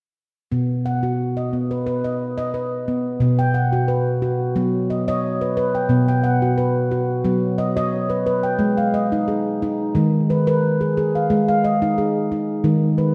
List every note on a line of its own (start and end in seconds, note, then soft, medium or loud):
0.52 3.17 B2 medium
0.52 0.85 B3 medium
0.86 1.37 F#5 soft
1.03 1.37 F#4 medium
1.37 1.86 D#5 soft
1.53 1.87 B3 soft
1.71 1.85 B4 soft
1.87 2.20 B4 medium
2.04 2.36 D#5 soft
2.38 2.71 D#5 medium
2.54 3.05 B4 soft
2.88 3.21 B3 medium
3.20 4.29 B2 medium
3.20 3.55 B3 medium
3.39 3.89 G5 soft
3.54 4.06 F#5 soft
3.73 4.06 F#4 medium
3.88 4.40 B4 medium
4.22 4.56 F#4 medium
4.56 5.65 F#3 medium
4.56 4.90 B3 medium
4.90 5.07 D#5 soft
5.08 5.58 C#5 medium
5.08 5.42 D#5 medium
5.41 5.56 B4 medium
5.57 5.91 B4 medium
5.75 6.07 G5 soft
5.89 6.99 B2 medium
5.89 6.24 B3 medium
6.08 6.58 G5 medium
6.24 6.76 F#5 soft
6.42 6.76 F#4 medium
6.58 7.10 B4 medium
6.91 7.26 F#4 medium
7.25 8.34 F#3 medium
7.25 7.59 B3 medium
7.58 7.75 D#5 medium
7.77 8.27 C#5 medium
7.77 8.11 D#5 medium
8.10 8.25 B4 medium
8.26 8.61 B4 medium
8.43 8.78 G5 soft
8.59 9.68 G#3 medium
8.77 9.28 F5 soft
8.94 9.46 D#5 medium
9.12 9.46 D#4 medium
9.28 9.80 G#4 medium
9.62 9.96 D#4 medium
9.95 11.04 D#3 medium
9.95 10.30 G#3 medium
10.30 10.46 B4 medium
10.47 10.97 A#4 medium
10.47 10.81 B4 medium
10.81 10.96 G#4 medium
10.97 11.31 G#4 medium
11.15 11.47 F5 soft
11.30 12.39 G#3 medium
11.48 11.98 F5 soft
11.64 12.16 D#5 medium
11.82 12.16 D#4 medium
11.98 12.49 G#4 medium
12.32 12.65 D#4 medium
12.64 13.15 D#3 medium
12.64 12.99 G#3 medium
12.98 13.14 B4 medium